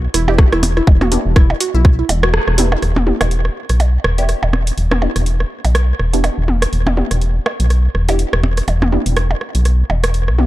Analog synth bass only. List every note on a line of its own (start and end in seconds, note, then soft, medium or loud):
0.14 0.44 E1 medium
0.53 0.81 E1 medium
0.87 1.17 E1 loud
1.26 1.54 E1 loud
1.74 2.03 B1 loud
2.09 2.39 E1 loud
2.48 2.76 E1 loud
2.83 3.12 E1 loud
3.21 3.49 E1 loud
3.70 3.98 B1 medium
4.04 4.34 E1 medium
4.43 4.71 E1 medium
4.78 5.08 E1 loud
5.16 5.44 E1 loud
5.65 5.93 B1 medium
6.00 6.29 E1 medium
6.38 6.66 E1 medium
6.73 7.03 E1 loud
7.11 7.40 E1 loud
7.60 7.88 B1 loud
7.95 8.25 E1 medium
8.33 8.61 E1 medium
8.68 8.98 E1 loud
9.06 9.35 E1 loud
9.55 9.83 B1 medium
9.90 10.30 E1 medium
10.28 10.46 B1 medium